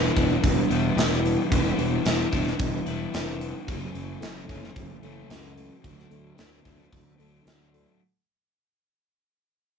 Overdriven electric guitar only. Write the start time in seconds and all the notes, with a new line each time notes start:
Already playing: E3 G3 B3 E4
0.13 G3 B3 E4
0.68 G3 B3 E4
0.95 E3 G3 B3 E4
1.50 E3 G3 B3 E4
2.04 E3 G3 B3 E4
2.31 G3 B3 E4
2.86 G3 B3 E4
3.14 E3 G3 B3 E4
3.67 F#2 C#3 F#3 A3 C#4
4.21 C#3 F#3 A3 C#4
4.50 F#3 A3 C#4
5.03 F#3 A3 C#4
5.30 C#3 F#3 A3 C#4
5.83 D3 F#3 A3 D4
6.37 D3 F#3 A3 D4
6.64 F#3 A3 D4
7.18 F#3 A3 D4
7.46 D3 F#3 A3 D4